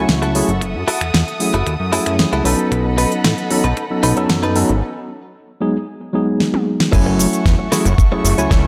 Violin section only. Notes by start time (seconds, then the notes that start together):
Already playing: A4 E5 F#5 C#6
0.61 D#6
2.45 A4 D#5 F#5 B5
6.93 A3 E5 F#5 C#6